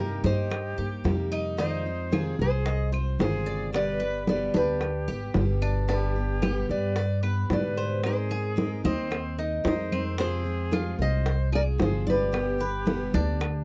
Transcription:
Already playing: G2 C3 G3 A#3 D#4 G4 A#4
0.00 G4 A#4
0.23 G2 A#3 D#4 G4 C5, high bongo, high conga
0.50 muted steel-string acoustic guitar stroke, high bongo, high conga, claves
0.76 G2 A#3 D#4 G4, high bongo, high conga
1.04 F2 C3 G3 A#3 D#4 G4, high bongo, low bongo, high conga
1.32 D#4, claves
1.57 C3 D#3 G#3 C4 D#4 F4 C5 D#5, high bongo, high conga
1.85 G#3 C4 F4, high conga
2.12 C3 D#3 G#3 C4 F4 G#4, high bongo, high conga, claves
2.39 C2 G#3 C4 F4 G#4 C5, high bongo, high conga
2.66 D#5, muted steel-string acoustic guitar stroke, high bongo, high conga
2.92 G#3 C4 F4 C5, high bongo, high conga, claves
3.19 G1 C3 D#3 G#3 C4 F4 G#4 C5, high bongo, low bongo, high conga
3.46 D5, high bongo
3.73 B2 D3 G3 B3 G4 B4 D5, high bongo, high conga, claves
4.00 G3 B3 G4 B4, high bongo, high conga
4.27 B2 D3 G3 B3 G4 B4 D5, high bongo, high conga
4.54 D2 G3 B3 D4 G4 B4, high bongo, high conga
4.81 muted steel-string acoustic guitar stroke, high bongo, high conga, claves
5.08 G#1 G3 B3 G4, high bongo, high conga
5.34 G1 B2 D3 G3 B3 G4, high bongo, low bongo, high conga
5.62 D4, claves
5.88 B2 D3 G3 B3 D4 G4 B4, high bongo, high conga
6.16 G3 B3 G4, high conga
6.42 B2 D3 G3 B3 G4, high bongo, high conga, claves
6.69 G2 G3 B3 G4 B4 D5, high bongo, high conga
6.96 D5, muted steel-string acoustic guitar stroke, high bongo, high conga
7.22 G3 B3 G4 B4, high bongo, high conga, claves
7.50 G#2 B2 D3 G3 B3 G4 B4 D5, high bongo, low bongo, high conga
7.77 C5, high bongo
8.03 G#3 C4 D#4 G#4 A#4 C5, high bongo, high conga, claves
8.29 C4 D#4 G#4 A#4, high bongo, high conga
8.56 G#3 C4 D#4 A#4, high bongo, high conga
8.84 D#2 C4 D#4 A#4 C5 D#5, high bongo, high conga
9.11 muted steel-string acoustic guitar stroke, high bongo, high conga, claves
9.38 C4 D#4 A#4, high bongo, high conga
9.64 F2 G#3 C4 D#4 A#4 C5 D#5, high bongo, low bongo, high conga
9.92 C4, high conga, claves
10.18 C3 F3 G#3 C4 F4 G#4 C5, high bongo, high conga
10.44 G#3 C4 F4, high conga
10.71 C3 F3 G#3 C4 F4, high bongo, high conga, claves
10.99 C2 G#3 C4 F4 C5 D#5, high bongo, high conga
11.26 C5, muted steel-string acoustic guitar stroke, high bongo, high conga
11.52 G#3 C4 F4 G#4 A#4 D5, high bongo, high conga, claves
11.78 G1 C3 F3 G#3 C4 F4 G#4 C5, high bongo, low bongo, high conga
12.07 G4 B4 D5, high bongo, high conga
12.32 B2 D3 G3 B3 G4, high bongo, high conga, claves
12.58 G3 B3 G4 B4, high bongo, high conga
12.85 B2 D3 G3 B3 G4, high bongo, high conga
13.13 D2 G3 B3 D4 G4, high bongo, high conga
13.40 muted steel-string acoustic guitar stroke, high bongo, high conga, claves

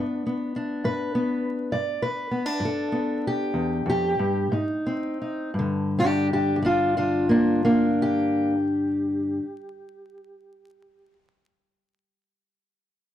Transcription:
Already playing: G2 B3 D4
0.27 B3
0.56 D4
0.84 G2 B4
1.15 B3
1.72 G2 D5
2.02 B4
2.31 B3
2.46 D4
2.60 G2
2.65 A4
2.92 B3
3.27 G4
3.54 E2
3.86 F2 G4
4.19 G2
4.52 G#2 D#4
4.86 C4
5.22 D#4
5.54 G2
5.59 D3
5.99 D4 G4
6.33 D4 G4
6.56 G4
6.62 D4 F4 D5
6.97 D4 F4
7.29 A#3 D4
7.65 A#3 D4
8.02 G4

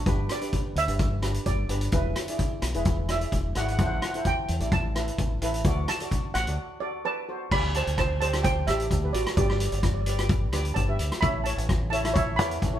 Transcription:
0.06 G1 D4 G4 B4, kick, closed hi-hat
0.29 D5, cross-stick, closed hi-hat
0.41 D4 G4 B4, closed hi-hat
0.53 kick, closed hi-hat
0.76 D2 E5, closed hi-hat
0.87 G1 D4 G4 B4, closed hi-hat
0.99 kick, closed hi-hat
1.22 D4 G4 B4, cross-stick, closed hi-hat
1.34 closed hi-hat
1.46 G1 D5, kick, closed hi-hat
1.69 G1 D4 G4 B4, closed hi-hat
1.81 closed hi-hat
1.92 E1 E4 G#4 B4, kick, closed hi-hat
2.16 cross-stick, closed hi-hat
2.28 E4 G#4 D5, closed hi-hat
2.39 kick, closed hi-hat
2.62 B1, cross-stick, closed hi-hat
2.74 E1 E4 G#4 B4, closed hi-hat
2.85 kick, closed hi-hat
3.09 E4 G#4 D5 E5, cross-stick, closed hi-hat
3.21 closed hi-hat
3.32 E1, kick, closed hi-hat
3.55 G#1 E4 G#4 D5 F#5, cross-stick, closed hi-hat
3.66 F#5, closed hi-hat
3.72 F#5
3.78 A1 E4 A4 C5 F#5, kick, closed hi-hat
3.87 F#5
3.95 F#5
4.02 F#5, cross-stick, closed hi-hat
4.10 F#5, closed hi-hat
4.15 E4 A4 C5
4.25 G5, kick, closed hi-hat
4.48 E2, closed hi-hat
4.60 A1 E4 A4 D5, closed hi-hat
4.72 A5, kick, closed hi-hat
4.95 E4 A4 B4, cross-stick, closed hi-hat
5.08 closed hi-hat
5.18 A1, kick, closed hi-hat
5.42 A1 E4 A4 B4, closed hi-hat
5.54 closed hi-hat
5.64 D2 F#4 A4 D5, kick, closed hi-hat
5.88 A5, cross-stick, closed hi-hat
6.00 F#4 A4 D5, closed hi-hat
6.11 kick, closed hi-hat
6.34 A1 F#5, cross-stick, closed hi-hat
6.47 D2 F#4 A4 D5, closed hi-hat
6.80 F#4 A4 D5
7.05 B4 D5 A5
7.29 F#4 A4 C5
7.51 D2 G4 A4 D5 B5, kick, crash
7.74 C5 A5, closed hi-hat
7.87 D2, closed hi-hat
7.98 C5 A5, kick, cross-stick, closed hi-hat
8.21 G4 A4 C5 D5 A5, closed hi-hat
8.33 G4 A4 D5, cross-stick, closed hi-hat
8.43 C5 G5, kick, closed hi-hat
8.67 A1 G4 A4 D5 E5, cross-stick, closed hi-hat
8.80 closed hi-hat
8.91 D2, kick, closed hi-hat
9.04 G4 A4 B4
9.13 A1 F#4 D5, closed hi-hat
9.26 cross-stick, closed hi-hat
9.37 G1 G4 B4 D5, kick, closed hi-hat
9.46 D5, cross-stick
9.52 D5
9.58 D5, closed hi-hat
9.66 D5
9.72 G1 D5, closed hi-hat
9.79 D5
9.83 D5, kick, cross-stick, closed hi-hat
9.94 D5
10.01 D5
10.06 G4 B4 D5, closed hi-hat
10.19 G4 B4 D5, cross-stick, closed hi-hat
10.29 kick, closed hi-hat
10.52 D2 G4 B4 D5, cross-stick, closed hi-hat
10.65 closed hi-hat
10.74 G1 D5 A5, kick, closed hi-hat
10.89 G4 B4 E5
10.99 D2, closed hi-hat
11.12 cross-stick, closed hi-hat
11.21 A1 E4 A4 C#5 E5 B5, kick, closed hi-hat
11.44 C#5 A5, closed hi-hat
11.58 A1, closed hi-hat
11.69 kick, cross-stick, closed hi-hat
11.90 E4 A4 C#5 E5 A5, closed hi-hat
12.04 E4 A4 E5, cross-stick, closed hi-hat
12.14 C#5 E5, kick, closed hi-hat
12.36 E2 E4 A4 C#5 D5 B5, cross-stick, closed hi-hat
12.51 closed hi-hat
12.62 A1, kick, closed hi-hat
12.73 E4 A4 C#5

